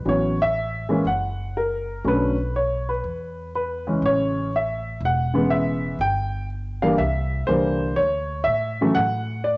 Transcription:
0.05 1.01 A1 medium
0.05 0.36 E3 soft
0.05 0.36 F#3 soft
0.05 0.36 B3 soft
0.05 0.36 C#4 soft
0.05 0.42 C#5 medium
0.42 1.08 E5 medium
0.89 1.03 E3 medium
0.89 1.03 G#3 medium
0.89 1.04 A#3 medium
0.89 1.04 C#4 medium
1.05 2.00 F#1 medium
1.05 1.57 F#5 medium
1.57 2.07 A#4 medium
2.04 3.00 B1 medium
2.04 2.35 D3 medium
2.04 2.35 F#3 soft
2.04 2.35 A3 soft
2.04 2.35 C#4 medium
2.04 2.57 B4 medium
2.56 2.89 C#5 medium
2.89 3.50 B4 medium
3.04 3.99 E2 medium
3.55 4.05 B4 medium
3.87 4.49 C#3 medium
3.87 4.49 E3 medium
3.87 4.49 G#3 soft
3.87 4.49 C#4 medium
4.02 4.97 A1 medium
4.02 4.55 C#5 medium
4.56 5.00 E5 medium
5.00 5.96 E1 medium
5.05 5.50 F#5 medium
5.34 5.97 C#3 medium
5.34 5.97 E3 medium
5.34 5.97 G#3 medium
5.34 5.97 B3 medium
5.50 5.97 E5 medium
5.99 6.95 G1 medium
5.99 6.47 G5 loud
6.82 6.97 D3 medium
6.82 6.97 E3 medium
6.82 6.97 G3 medium
6.82 6.98 A#3 medium
6.82 6.99 F5 medium
6.98 7.45 C2 medium
6.98 7.45 E5 medium
7.47 7.95 C2 medium
7.47 7.98 D3 medium
7.47 7.98 E3 medium
7.47 7.98 G3 medium
7.47 7.98 A#3 medium
7.47 7.99 C5 medium
7.96 8.44 D2 medium
7.96 8.48 C#5 medium
8.44 8.93 A2 medium
8.44 8.97 E5 medium
8.81 8.96 C#3 medium
8.81 8.96 E3 medium
8.81 8.96 F#3 medium
8.81 8.96 A3 medium
8.95 9.57 A2 medium
8.95 9.47 F#5 loud
9.44 9.57 D5 medium

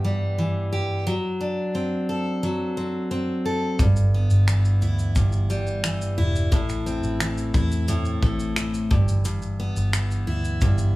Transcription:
0.00 1.14 G2 medium
0.00 0.37 E3 medium
0.00 1.13 B3 medium
0.00 0.71 G4 medium
0.04 1.14 G3 medium
0.38 1.06 E3 medium
0.73 1.13 G4 medium
1.07 2.42 F#3 medium
1.41 4.14 D4 medium
1.75 2.76 C4 medium
2.09 3.44 A4 medium
2.43 3.86 F#3 medium
2.77 3.10 C4 medium
3.11 3.86 C4 medium
3.45 3.86 A4 medium
3.79 4.27 G1 loud
3.79 5.14 G2 medium
3.79 kick loud
3.79 shaker medium
3.96 shaker soft
4.14 6.60 B3 medium
4.30 4.78 G1 medium
4.30 shaker medium
4.48 5.83 E3 medium
4.48 finger snap loud
4.48 shaker medium
4.65 shaker soft
4.82 5.13 D2 medium
4.82 6.17 E4 medium
4.82 shaker soft
4.99 shaker soft
5.15 6.14 G1 medium
5.15 6.52 G2 medium
5.15 kick medium
5.15 shaker medium
5.32 shaker soft
5.50 6.59 G3 medium
5.50 shaker soft
5.67 shaker soft
5.84 7.20 E3 medium
5.84 finger snap loud
5.84 shaker medium
6.02 shaker soft
6.18 6.50 E1 medium
6.18 7.54 E4 medium
6.36 shaker medium
6.52 7.00 A1 loud
6.52 7.87 A2 medium
6.52 kick medium
6.52 shaker medium
6.69 finger snap soft
6.69 shaker soft
6.86 8.98 C4 medium
6.86 shaker medium
7.03 7.51 A1 medium
7.03 shaker medium
7.20 8.56 E3 medium
7.20 finger snap loud
7.20 shaker medium
7.38 shaker soft
7.54 8.19 E2 medium
7.54 10.27 E4 medium
7.54 kick medium
7.54 shaker soft
7.72 shaker soft
7.88 8.91 A2 medium
7.88 shaker medium
8.05 shaker soft
8.22 8.87 A1 medium
8.22 8.98 A3 medium
8.22 kick medium
8.39 shaker soft
8.56 9.93 E3 medium
8.56 finger snap medium
8.56 shaker medium
8.74 shaker soft
8.91 9.73 G1 medium
8.91 9.24 G2 medium
8.91 kick medium
9.08 shaker medium
9.25 10.61 G2 medium
9.25 shaker medium
9.42 shaker soft
9.60 10.96 B3 medium
9.76 10.24 G1 loud
9.76 shaker medium
9.93 10.96 E3 medium
9.93 finger snap loud
9.93 shaker medium
10.11 shaker soft
10.27 10.59 D2 medium
10.27 10.96 E4 medium
10.45 shaker soft
10.61 10.96 G1 medium
10.61 10.96 G2 medium
10.61 kick medium
10.61 shaker medium
10.78 shaker medium

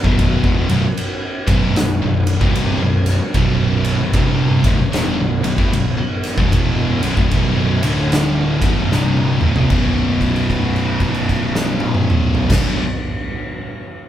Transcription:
0.00 0.42 B1 loud
0.00 7.79 B3 medium
0.00 7.79 F#4 medium
0.00 7.78 B4 medium
0.04 0.41 B0 loud
0.04 0.43 F#2 medium
0.04 0.43 B2 loud
0.04 kick loud
0.19 kick loud
0.19 ride loud
0.44 0.67 E1 loud
0.44 0.67 E2 medium
0.44 0.68 B2 loud
0.44 kick loud
0.68 0.83 B0 loud
0.68 0.82 B1 loud
0.68 0.82 F#2 loud
0.68 ride medium
0.97 ride loud
1.47 1.75 B0 loud
1.47 1.74 B1 loud
1.47 1.75 F#2 loud
1.47 1.76 B2 loud
1.47 kick loud
1.47 ride medium
1.76 2.00 B0 medium
1.76 2.01 B1 medium
1.76 2.01 F#2 medium
1.76 snare loud
1.76 ride loud
2.02 2.39 B0 medium
2.02 2.36 B1 medium
2.02 2.36 F#2 medium
2.27 ride medium
2.40 2.78 C1 loud
2.40 2.79 C2 medium
2.40 2.79 G2 loud
2.40 2.79 C3 loud
2.40 kick loud
2.55 ride loud
2.80 3.18 B0 medium
2.80 3.14 B1 medium
2.80 3.15 F#2 medium
3.06 snare soft
3.06 ride medium
3.34 3.95 B0 loud
3.34 3.99 B1 loud
3.34 3.99 F#2 loud
3.34 3.99 B2 loud
3.34 kick loud
3.34 ride loud
3.85 ride medium
3.99 4.13 B0 medium
3.99 4.14 B1 medium
3.99 4.14 F#2 medium
4.13 4.61 C1 loud
4.13 4.63 C2 loud
4.13 4.63 G2 loud
4.13 4.63 C3 loud
4.13 kick loud
4.13 ride loud
4.64 4.78 D1 loud
4.64 4.78 D2 medium
4.64 4.78 A2 medium
4.64 kick loud
4.64 ride medium
4.79 4.92 B0 medium
4.79 4.93 B1 medium
4.79 4.93 F#2 medium
4.93 5.17 E1 loud
4.93 5.17 E2 loud
4.93 5.17 B2 loud
4.93 snare loud
4.93 ride loud
5.18 5.42 B0 medium
5.18 5.42 B1 medium
5.18 5.42 F#2 medium
5.43 5.57 B0 medium
5.43 5.57 B1 medium
5.43 5.58 F#2 medium
5.43 ride medium
5.58 5.72 A1 loud
5.58 5.72 A2 medium
5.58 5.72 E3 loud
5.58 kick loud
5.72 5.97 B0 medium
5.72 5.98 B1 medium
5.72 5.98 F#2 medium
5.72 ride loud
5.98 muted picked electric bass stroke soft
5.98 muted distorted electric guitar stroke medium
6.24 snare soft
6.24 ride medium
6.38 6.51 B0 loud
6.38 6.52 B1 loud
6.38 6.52 F#2 loud
6.38 kick loud
6.52 6.99 E1 loud
6.52 7.01 E2 loud
6.52 7.01 B2 loud
6.52 7.02 E3 loud
6.52 kick loud
6.52 ride loud
7.02 7.17 B0 loud
7.02 7.16 B1 loud
7.02 7.16 F#2 loud
7.02 ride medium
7.17 7.31 D1 loud
7.17 7.31 D2 loud
7.17 7.31 A2 loud
7.17 kick loud
7.31 7.78 B0 loud
7.31 7.80 B1 loud
7.31 7.81 F#2 loud
7.31 7.80 B2 loud
7.31 kick loud
7.31 ride loud
7.82 8.58 D1 loud
7.82 8.60 D2 medium
7.82 8.60 A2 medium
7.82 8.61 D3 loud
7.82 ride medium
8.12 snare loud
8.12 ride loud
8.61 8.89 B0 loud
8.61 8.90 B1 medium
8.61 8.90 F#2 loud
8.61 8.90 B2 loud
8.61 kick loud
8.61 ride medium
8.90 9.38 C1 loud
8.90 9.39 C2 loud
8.90 9.40 G2 loud
8.90 9.40 C3 loud
8.90 snare medium
9.17 high tom medium
9.40 9.55 D1 loud
9.40 9.54 D2 medium
9.40 9.54 A2 loud
9.40 mid tom medium
9.54 9.69 F1 medium
9.54 9.68 F2 medium
9.54 9.69 C3 loud
9.54 floor tom loud
9.68 12.33 B0 medium
9.68 12.49 B1 loud
9.68 12.51 F#2 loud
9.68 12.53 B2 loud
9.68 12.34 B3 medium
9.68 12.34 F#4 medium
9.68 12.34 B4 medium
9.68 kick loud
9.68 crash medium
10.21 kick medium
10.21 crash medium
10.36 crash medium
10.50 kick medium
10.50 crash soft
10.76 crash soft
11.00 kick medium
11.00 crash medium
11.14 crash medium
11.29 kick medium
11.29 crash medium
11.55 snare medium
11.80 high tom loud
11.95 mid tom loud
12.10 mid tom loud
12.35 floor tom loud
12.49 12.78 B0 loud
12.49 12.80 B1 medium
12.49 12.81 F#2 loud
12.49 kick loud
12.49 snare loud
12.49 crash loud
12.53 12.82 B2 loud

